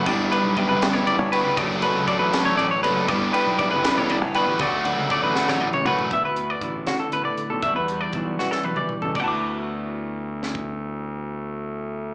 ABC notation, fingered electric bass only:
X:1
M:6/8
L:1/16
Q:3/8=79
K:D
V:1 name="Fingered electric bass" clef=bass
G,,,2 z B,,,2 G,,,2 E,,,2 G,,,2 C,, | F,,,3 C,, z A,,, z A,,, A,,,2 F,,,2 | G,,,2 z B,,,2 G,,,2 E,,,2 G,,,2 A,,, | D,,3 C,, z A,,, z A,,, A,,,2 F,,2 |
D,, D,,3 A,,,2 D,2 z D, z B,,, | E,, E,,3 B,,,2 E,2 z E, z C,, | D,,12- | D,,12 |]